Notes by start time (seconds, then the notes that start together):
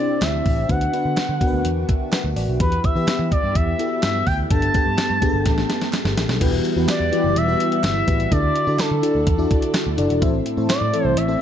Already playing: C3 C4 D4 E4 G4 D5
0.00 G4 C5
0.22 D2 E5, snare, clap, closed hi-hat
0.46 A1, kick, open hi-hat
0.68 D2 D3 B3 D4 F#4 B4 F#5, kick, closed hi-hat
0.81 closed hi-hat
0.93 B3 D4 F#4 B4, closed hi-hat
1.05 D3
1.17 muted picked electric bass stroke, snare, clap, closed hi-hat
1.29 D3
1.40 B3 D4 F#4 A#4 G5, kick, closed hi-hat
1.47 B4
1.53 D2
1.65 E2 F#5, closed hi-hat
1.89 E5, kick, closed hi-hat
2.12 B4 F#5, snare, clap, closed hi-hat
2.24 D2
2.36 A1 D5 F#5, open hi-hat
2.48 B1
2.60 E2 E3 B3 E4 G4 B4, kick, closed hi-hat
2.72 closed hi-hat
2.84 E5, kick, closed hi-hat
2.95 E3 B3 E4 G4 B4
3.07 muted picked electric bass stroke, snare, clap, closed hi-hat
3.19 E3
3.32 D5, kick, closed hi-hat
3.44 G2
3.55 E2 E5, kick, closed hi-hat
3.79 B3 E4 F#4 A4, closed hi-hat
3.85 G4
4.03 G2 E5, snare, clap, closed hi-hat
4.26 D2 G5, kick, open hi-hat
4.50 G1 G2 A3 B3 D4 G4 A4 A5, kick, closed hi-hat
4.62 closed hi-hat
4.74 B3 D4 G4 A4, kick, closed hi-hat
4.86 G2
4.98 muted picked electric bass stroke, snare, clap, closed hi-hat
5.10 G2
5.22 B3 D4 G4 G#4, kick, closed hi-hat
5.29 A4
5.34 G1
5.46 A1, kick, snare, closed hi-hat
5.58 snare
5.70 snare, closed hi-hat
5.81 snare, closed hi-hat
5.93 snare, clap, closed hi-hat
6.05 G1, snare
6.17 A1, snare, closed hi-hat
6.29 B1, snare
6.41 E1 E3 G3 B3 E4 F#4 G4 B4 F#5, kick, closed hi-hat, crash
6.65 closed hi-hat
6.76 E2 E3 B3 E4 F#4 G4 B4
6.88 D5, snare, clap, closed hi-hat, tambourine
7.00 E2
7.12 E3 B3 E4 F#4 G4 D5, closed hi-hat
7.24 F#1
7.36 E1 E5, closed hi-hat
7.47 B3 E4 F#4 G4 B4
7.60 closed hi-hat
7.72 closed hi-hat
7.84 G1 E5, snare, clap, closed hi-hat, tambourine
8.07 A1 B3 E4 F#4 G4 B4, kick, closed hi-hat
8.20 closed hi-hat
8.31 D2 D3 D4 E4 F#4 A4 D5, kick, closed hi-hat
8.56 closed hi-hat
8.67 D3 D4 E4 F#4 A4 D5
8.79 A4, muted picked electric bass stroke, snare, clap, closed hi-hat, tambourine
8.91 D3
9.02 D4 E4 F#4 A4 D5, closed hi-hat
9.15 D2
9.27 E2, kick, closed hi-hat
9.38 D4 E4 F#4 A4 D5
9.51 kick, closed hi-hat
9.62 closed hi-hat
9.74 snare, clap, closed hi-hat, tambourine
9.87 D2
9.97 F#1 D4 E4 F#4 A4 D5, closed hi-hat
10.10 E1, closed hi-hat
10.22 A1 A2 E3 A3 C4 E4 A4 C5 E5, kick, closed hi-hat
10.46 closed hi-hat
10.57 A2 E3 C4 E4 A4 C5 E5
10.70 D5, muted picked electric bass stroke, snare, clap, closed hi-hat, tambourine
10.81 A2
10.93 E3 C4 E4 A4 C5 E5, closed hi-hat
11.05 C2 C5
11.17 A1 E5, closed hi-hat
11.28 C4 E4 A4 C5 E5